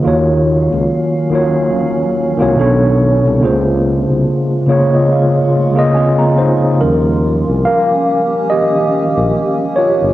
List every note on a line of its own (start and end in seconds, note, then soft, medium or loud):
0.03 0.68 D#2 loud
0.03 1.01 D#3 medium
0.03 2.56 D#3 medium
0.03 2.56 F#3 medium
0.03 1.01 A#3 medium
0.03 2.56 C#4 medium
0.03 1.02 F4 medium
0.03 1.02 F#4 medium
0.03 2.56 F5 medium
0.08 1.03 C#5 medium
0.72 0.89 C#2 medium
1.30 2.11 D#3 medium
1.30 2.12 A#3 medium
1.30 2.12 F4 medium
1.30 2.13 F#4 medium
1.35 2.14 C#5 medium
2.37 2.57 D#3 medium
2.37 2.58 A#3 medium
2.37 2.58 F4 medium
2.37 2.59 F#4 medium
2.41 2.58 C2 medium
2.41 2.59 C#5 loud
2.55 3.26 B2 medium
2.55 3.27 B3 medium
2.55 3.28 D4 medium
2.55 3.28 A4 medium
2.60 3.21 B1 loud
2.60 3.29 C#5 medium
3.25 3.42 C2 medium
3.40 4.05 C#2 loud
3.40 4.38 C#3 medium
3.40 6.77 C#3 medium
3.40 6.77 G#3 medium
3.40 4.39 A#3 medium
3.40 6.77 A#3 medium
3.40 6.77 F4 medium
3.40 4.40 F4 medium
3.44 4.40 G#4 medium
3.44 4.41 C5 medium
4.10 4.27 C2 medium
4.67 5.48 C#3 medium
4.67 5.49 A#3 medium
4.67 5.50 F4 medium
4.67 5.50 G#4 medium
4.67 4.71 C#5 medium
4.72 5.51 C#5 medium
4.94 5.11 D#5 medium
5.12 5.92 F5 medium
5.73 6.55 C#3 medium
5.73 6.55 A#3 medium
5.73 6.56 F4 medium
5.73 5.95 G#4 medium
5.79 6.57 D#5 loud
5.95 6.36 C4 medium
5.95 6.40 G#4 medium
5.95 6.17 G#5 medium
6.19 6.76 A#5 medium
6.38 6.78 D#4 medium
6.38 6.82 C5 medium
6.81 7.44 D#2 medium
6.81 10.14 D#3 medium
6.81 8.04 F3 medium
6.81 8.04 G3 soft
6.81 10.14 A#3 medium
6.81 10.14 C#4 medium
6.81 7.62 C#4 medium
6.81 10.14 G4 medium
6.81 7.66 A#4 medium
7.48 7.65 C2 medium
7.65 8.47 A#4 medium
7.65 8.52 F5 medium
8.50 9.73 G4 medium
8.50 9.81 D#5 medium
9.17 9.34 A#1 medium
9.76 9.97 F4 medium
9.76 9.95 C#5 loud
10.02 10.14 G1 medium